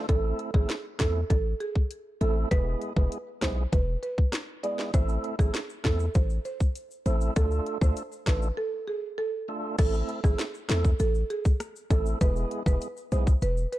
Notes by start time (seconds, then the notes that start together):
0.09 A1 A3 C4 E4 A4, kick, closed hi-hat
0.39 closed hi-hat
0.54 A1 A3 C4 E4 G#4 A4, kick
0.69 cross-stick, snare, closed hi-hat
0.99 E2 A3 C4 E4 A4, kick, cross-stick, snare, closed hi-hat
1.30 A1 A4, kick, closed hi-hat
1.60 G#4, closed hi-hat
1.76 kick
1.91 closed hi-hat
2.21 A1 A3 C4 E4 A4, closed hi-hat
2.51 E1 G#3 B3 E4 G#4 B4, kick, closed hi-hat
2.82 closed hi-hat
2.96 E1 G#3 B3 E4 G#4 B4, kick
3.12 closed hi-hat
3.41 B1 G#3 B3 E4 G#4 C5, kick, cross-stick, snare, closed hi-hat
3.72 E1 B4, kick, closed hi-hat
4.03 B4, closed hi-hat
4.18 kick
4.32 cross-stick, snare, closed hi-hat
4.63 G#3 B3 E4 G#4 D5, closed hi-hat
4.79 snare
4.94 A1 A3 C4 E4 A4 C5, kick, closed hi-hat, shaker
5.09 shaker
5.24 closed hi-hat
5.39 A1 A3 C4 E4 G#4 A4, kick, shaker
5.54 cross-stick, snare, closed hi-hat, shaker
5.70 shaker
5.84 E2 A3 C4 E4 A4, kick, cross-stick, snare, closed hi-hat
6.00 shaker
6.14 A1 C5, kick, closed hi-hat, shaker
6.30 shaker
6.45 C5, closed hi-hat, shaker
6.60 kick, shaker
6.76 closed hi-hat, shaker
6.91 shaker
7.06 A1 A3 C4 E4 A4 C5, closed hi-hat, shaker
7.21 shaker
7.36 D2 A3 D4 F4 A4, kick, closed hi-hat, shaker
7.51 shaker
7.66 closed hi-hat
7.81 D2 A3 D4 F4 A4 C5, kick, shaker
7.97 closed hi-hat, shaker
8.12 shaker
8.26 A1 A3 D4 F4 A4 B4, kick, cross-stick, snare, closed hi-hat
8.42 shaker
8.57 A4
8.88 G#4
9.18 A4
9.48 A3 D4 F4 A4
9.78 A1 A3 C4 E4 A4, kick, closed hi-hat, crash, shaker
9.94 shaker
10.09 closed hi-hat
10.24 A1 A3 C4 E4 G#4 A4, kick, shaker
10.38 cross-stick, snare, closed hi-hat, shaker
10.54 shaker
10.69 E2 A3 C4 E4 A4, cross-stick, snare, closed hi-hat, shaker
10.85 kick, shaker
10.99 A1 A4, closed hi-hat, shaker
11.15 shaker
11.30 G#4, closed hi-hat
11.45 kick, shaker
11.60 cross-stick, closed hi-hat, shaker
11.76 shaker
11.90 A1 A3 C4 E4 A4, kick, closed hi-hat, shaker
12.06 shaker
12.21 E1 G#3 B3 E4 G#4 B4, kick, closed hi-hat, shaker
12.36 shaker
12.51 closed hi-hat
12.66 E1 G#3 B3 E4 G#4 B4, kick, shaker
12.81 closed hi-hat, shaker
12.97 shaker
13.12 B1 G#3 B3 E4 G#4 C5, closed hi-hat, shaker
13.27 kick, shaker
13.42 E1 B4, closed hi-hat, shaker
13.57 shaker
13.72 B4, closed hi-hat